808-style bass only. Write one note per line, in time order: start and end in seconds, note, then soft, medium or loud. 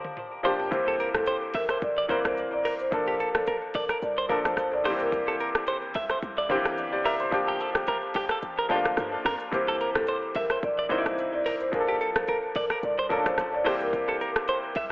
0.72 1.02 C2 loud
1.15 1.23 C2 loud
1.55 1.74 A1 loud
1.82 2.12 A#1 loud
2.25 2.44 C2 medium
2.92 3.22 A#1 loud
3.35 3.44 A#1 loud
3.75 3.94 A1 medium
4.02 4.33 C2 loud
4.45 4.54 A#1 medium
4.57 4.86 A#1 medium
4.85 5.44 C2 loud
5.95 6.15 C2 loud
6.22 6.53 C2 loud
6.65 6.85 A1 medium
7.32 7.63 G1 loud
7.75 7.84 G1 loud
8.15 8.35 F1 medium
8.43 8.73 A1 loud
8.85 8.94 G1 medium
8.97 9.17 G2 medium
9.25 9.36 F2 loud
9.53 9.83 C2 loud
9.95 10.04 C2 loud
10.35 10.55 A1 loud
10.63 10.93 A#1 loud
11.05 11.25 C2 medium
11.73 12.03 A#1 loud
12.16 12.24 A#1 loud
12.56 12.75 A1 medium
12.83 13.13 C2 loud
13.26 13.35 A#1 medium
13.38 13.67 A#1 medium
13.66 14.24 C2 loud
14.76 14.92 C2 medium